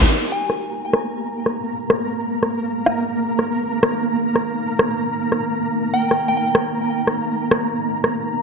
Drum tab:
SD |-----r----r-----|r----r-----r----|r-----r----r----|-r----r-----r---|

SD |-----r----r-----|r----r-----r----|